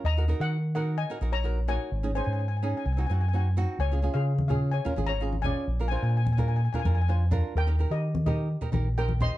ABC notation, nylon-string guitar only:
X:1
M:4/4
L:1/16
Q:1/4=128
K:Ebdor
V:1 name="Nylon-string guitar"
z [EGB] [EGB]2 z2 [EGB]2 z [EGB] [EGB] z [EGB] z [EGB]2 | z [DEA] [DEA]2 z2 [DEA]2 z [CEG] [CEG] z [CEG] z [CEG]2 | z [DFA] [DFA]2 z2 [DFA]2 z [DFB] [DFA] z [DFA] z [DFA]2 | z [=DFB] [DFB]2 z2 [DFB]2 z [DFB] [DFB] z [DFc] z [DFB]2 |
z [E=GB] [EGB]2 z2 [EGB]2 z [EGB] [EGB] z [EGB] z [EGc]2 |]